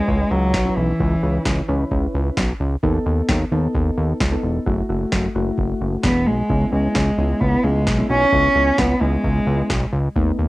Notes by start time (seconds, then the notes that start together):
Already playing: G#3 C#4 E4 B4
0.08 C#2, kick
0.31 C#2 F#3
0.54 B1, kick, snare
0.65 C#4 E4 B4
0.77 B1 E3
1.00 C#2 C#4 E4 B4, kick
1.23 C#2 C#4 E4 B4
1.45 C#2, kick, snare
1.68 C#2 C#4 E4 B4
1.91 C#2, kick
2.15 C#2
2.37 B1, kick, snare
2.60 C#2
2.83 D#2 B3 D#4 A4, kick
3.06 D#2
3.29 D#2, kick, snare
3.52 D#2 B3 D#4 A4
3.75 D#2, kick
3.97 D#2
4.20 C#2, kick, snare
4.32 B3 D#4 A4
4.43 E1
4.66 F#1 A3 E4 F#4, kick
4.89 F#1 A3 E4 F#4
5.12 F#1, kick, snare
5.35 F#1 A3 E4 F#4
5.58 F#1, kick
5.81 F#1
6.03 E1 B3, kick, snare
6.26 B1 G#3
6.49 C#2 B3 C#4 E4, kick
6.72 C#2 G#3
6.95 C#2, kick, snare
7.18 C#2 B3 C#4 E4
7.41 C#2 B3, kick
7.64 C#2 G#3
7.87 B1, kick, snare
7.98 B3 C#4 E4
8.10 B1 C#4
8.32 C#2 B3 C#4 E4, kick
8.55 C#2 B3 C#4 E4
8.78 C#2 B3, kick, snare
9.01 C#2 G#3 B3 C#4 E4
9.24 C#2, kick
9.47 C#2
9.70 B1, kick, snare
9.93 C#2
10.16 D#2 A3 B3 D#4, kick
10.39 D#2